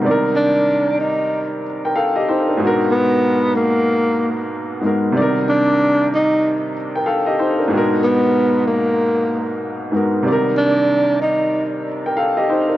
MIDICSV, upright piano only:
0, 0, Header, 1, 2, 480
1, 0, Start_track
1, 0, Tempo, 638298
1, 38, Time_signature, 4, 2, 24, 8
1, 9604, End_track
2, 0, Start_track
2, 0, Title_t, "Upright piano"
2, 0, Program_c, 0, 0
2, 0, Control_c, 0, 64, 127
2, 9, Note_on_c, 0, 48, 76
2, 28, Note_on_c, 0, 55, 75
2, 46, Note_on_c, 0, 74, 76
2, 47, Control_c, 0, 64, 0
2, 65, Note_on_c, 0, 51, 73
2, 83, Note_on_c, 0, 70, 89
2, 171, Control_c, 0, 64, 127
2, 1218, Note_off_c, 0, 74, 0
2, 1228, Note_off_c, 0, 51, 0
2, 1237, Note_off_c, 0, 70, 0
2, 1391, Note_on_c, 0, 79, 66
2, 1395, Note_on_c, 0, 70, 55
2, 1471, Note_on_c, 0, 77, 80
2, 1475, Note_off_c, 0, 79, 0
2, 1475, Note_on_c, 0, 69, 59
2, 1477, Note_off_c, 0, 70, 0
2, 1617, Note_off_c, 0, 77, 0
2, 1619, Note_off_c, 0, 69, 0
2, 1622, Note_on_c, 0, 75, 70
2, 1626, Note_on_c, 0, 67, 61
2, 1710, Note_off_c, 0, 75, 0
2, 1712, Note_off_c, 0, 67, 0
2, 1719, Note_on_c, 0, 72, 73
2, 1724, Note_on_c, 0, 63, 58
2, 1861, Note_off_c, 0, 72, 0
2, 1864, Note_off_c, 0, 63, 0
2, 1864, Note_on_c, 0, 70, 60
2, 1868, Note_on_c, 0, 62, 53
2, 1914, Note_off_c, 0, 48, 0
2, 1923, Note_off_c, 0, 55, 0
2, 1934, Note_on_c, 0, 44, 77
2, 1953, Note_on_c, 0, 56, 75
2, 1969, Control_c, 0, 64, 0
2, 1971, Note_on_c, 0, 47, 72
2, 1989, Note_on_c, 0, 66, 75
2, 1996, Note_off_c, 0, 70, 0
2, 2007, Note_on_c, 0, 70, 91
2, 2085, Control_c, 0, 64, 127
2, 2096, Note_off_c, 0, 62, 0
2, 3596, Note_off_c, 0, 44, 0
2, 3605, Note_off_c, 0, 56, 0
2, 3614, Note_off_c, 0, 47, 0
2, 3618, Note_on_c, 0, 44, 60
2, 3623, Note_off_c, 0, 66, 0
2, 3628, Note_on_c, 0, 56, 54
2, 3633, Note_off_c, 0, 70, 0
2, 3637, Note_on_c, 0, 59, 53
2, 3645, Note_on_c, 0, 66, 51
2, 3655, Note_on_c, 0, 70, 66
2, 3850, Note_on_c, 0, 48, 77
2, 3868, Note_off_c, 0, 44, 0
2, 3869, Note_on_c, 0, 55, 73
2, 3873, Note_off_c, 0, 56, 0
2, 3877, Note_off_c, 0, 59, 0
2, 3882, Note_off_c, 0, 66, 0
2, 3886, Note_off_c, 0, 70, 0
2, 3886, Control_c, 0, 64, 0
2, 3887, Note_on_c, 0, 74, 77
2, 3906, Note_on_c, 0, 51, 73
2, 3924, Note_on_c, 0, 70, 92
2, 4005, Control_c, 0, 64, 127
2, 5059, Note_off_c, 0, 74, 0
2, 5068, Note_off_c, 0, 51, 0
2, 5078, Note_off_c, 0, 70, 0
2, 5230, Note_on_c, 0, 79, 71
2, 5235, Note_on_c, 0, 70, 56
2, 5310, Note_on_c, 0, 77, 78
2, 5314, Note_on_c, 0, 69, 64
2, 5315, Note_off_c, 0, 79, 0
2, 5317, Note_off_c, 0, 70, 0
2, 5456, Note_off_c, 0, 77, 0
2, 5458, Note_off_c, 0, 69, 0
2, 5462, Note_on_c, 0, 75, 73
2, 5466, Note_on_c, 0, 67, 62
2, 5550, Note_off_c, 0, 75, 0
2, 5553, Note_off_c, 0, 67, 0
2, 5559, Note_on_c, 0, 72, 72
2, 5564, Note_on_c, 0, 63, 59
2, 5701, Note_off_c, 0, 72, 0
2, 5703, Note_off_c, 0, 63, 0
2, 5703, Note_on_c, 0, 70, 60
2, 5708, Note_on_c, 0, 62, 52
2, 5754, Note_off_c, 0, 48, 0
2, 5763, Note_off_c, 0, 55, 0
2, 5773, Note_on_c, 0, 44, 79
2, 5792, Note_on_c, 0, 56, 77
2, 5806, Control_c, 0, 64, 0
2, 5809, Note_on_c, 0, 47, 74
2, 5828, Note_on_c, 0, 66, 74
2, 5835, Note_off_c, 0, 70, 0
2, 5846, Note_on_c, 0, 70, 91
2, 5936, Note_off_c, 0, 62, 0
2, 5952, Control_c, 0, 64, 127
2, 7436, Note_off_c, 0, 44, 0
2, 7445, Note_off_c, 0, 56, 0
2, 7454, Note_off_c, 0, 47, 0
2, 7457, Note_on_c, 0, 44, 62
2, 7463, Note_off_c, 0, 66, 0
2, 7465, Note_on_c, 0, 56, 55
2, 7472, Note_off_c, 0, 70, 0
2, 7475, Note_on_c, 0, 59, 54
2, 7484, Note_on_c, 0, 66, 51
2, 7493, Note_on_c, 0, 70, 63
2, 7690, Note_on_c, 0, 48, 79
2, 7707, Note_off_c, 0, 44, 0
2, 7708, Note_on_c, 0, 55, 75
2, 7712, Note_off_c, 0, 56, 0
2, 7716, Note_off_c, 0, 59, 0
2, 7721, Note_off_c, 0, 66, 0
2, 7725, Note_off_c, 0, 70, 0
2, 7726, Note_on_c, 0, 74, 74
2, 7729, Control_c, 0, 64, 0
2, 7745, Note_on_c, 0, 51, 70
2, 7763, Note_on_c, 0, 70, 89
2, 7870, Control_c, 0, 64, 127
2, 8898, Note_off_c, 0, 74, 0
2, 8908, Note_off_c, 0, 51, 0
2, 8917, Note_off_c, 0, 70, 0
2, 9070, Note_on_c, 0, 79, 67
2, 9074, Note_on_c, 0, 70, 57
2, 9150, Note_on_c, 0, 77, 81
2, 9154, Note_on_c, 0, 69, 62
2, 9155, Note_off_c, 0, 79, 0
2, 9156, Note_off_c, 0, 70, 0
2, 9296, Note_off_c, 0, 77, 0
2, 9298, Note_off_c, 0, 69, 0
2, 9302, Note_on_c, 0, 75, 71
2, 9306, Note_on_c, 0, 67, 64
2, 9390, Note_off_c, 0, 75, 0
2, 9392, Note_off_c, 0, 67, 0
2, 9397, Note_on_c, 0, 72, 72
2, 9401, Note_on_c, 0, 63, 60
2, 9540, Note_off_c, 0, 72, 0
2, 9542, Note_off_c, 0, 63, 0
2, 9542, Note_on_c, 0, 70, 59
2, 9547, Note_on_c, 0, 62, 52
2, 9594, Note_off_c, 0, 48, 0
2, 9603, Note_off_c, 0, 55, 0
2, 9604, Note_off_c, 0, 62, 0
2, 9604, Note_off_c, 0, 70, 0
2, 9604, End_track
0, 0, End_of_file